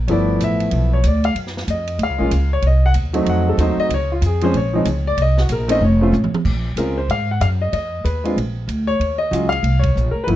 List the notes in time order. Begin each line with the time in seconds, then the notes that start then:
0.08 G1 F3 A3 B3 E4 C#5 D5, ride
0.39 A1, hi-hat pedal, ride
0.44 E5
0.60 ride
0.71 B1, ride
0.93 C#5
1.03 D2 D5, hi-hat pedal, ride
1.24 F5, ride
1.35 F#2, ride
1.47 snare
1.57 snare
1.67 F2 D#5, hi-hat pedal, ride
1.87 ride
1.98 D#2, ride
2.03 F5
2.09 C#2
2.18 A#1 G#3 A#3 C#4 F4
2.31 C#2, hi-hat pedal, ride
2.53 C#5
2.62 C2, ride
2.67 D#5
2.86 F#5
2.94 D#2, hi-hat pedal, ride
3.13 F#3 A3 C4 D#4, ride
3.26 F2 F#5, ride
3.49 A4
3.57 D#2 F#3 A3 C4 D#4, hi-hat pedal, ride
3.62 C5
3.77 D#5, muted upright bass stroke
3.89 C#2, ride
3.94 C#5
4.12 F4
4.21 F2, hi-hat pedal, ride
4.26 G#4
4.41 F3 G#3 C4 C#4 C5, ride
4.54 A#1 C#5, ride
4.73 F3 G#3 C4 D#4
4.85 C#2, hi-hat pedal, ride
5.07 D5
5.17 C2, ride
5.22 D#5
5.38 F#4, snare
5.49 A#1 A#4, hi-hat pedal, ride
5.68 A3 C4 C#4 D#4 D#5, ride
5.81 F1
5.85 C#5
6.01 A3 C4 C#4 F4
6.12 A1, hi-hat pedal, high tom
6.24 mid tom
6.33 muted upright bass stroke, mid tom
6.45 A#1, kick, crash
6.76 C#2 G#3 C4 C#4 F4 A#4, hi-hat pedal, ride
6.98 C5
7.08 G#2 F5, ride
7.31 F#5
7.40 F#2 F5, hi-hat pedal, ride
7.61 D#5
7.72 F2 D#5, ride
8.04 D#2 B4, hi-hat pedal, ride
8.24 G#3 C4 D4 F4, ride
8.36 A#1, ride
8.68 D2, hi-hat pedal, ride
8.87 C#5
8.99 D#2, ride
9.18 D#5
9.31 C#2 F#3 G#3 C#4 F4, hi-hat pedal, ride
9.49 F5, ride
9.63 C2, ride
9.79 C#5, ride
9.84 kick
9.95 A#1, hi-hat pedal
10.11 A#4, muted upright bass stroke
10.24 G1 F3 B4, ride
10.28 A3 B3 E4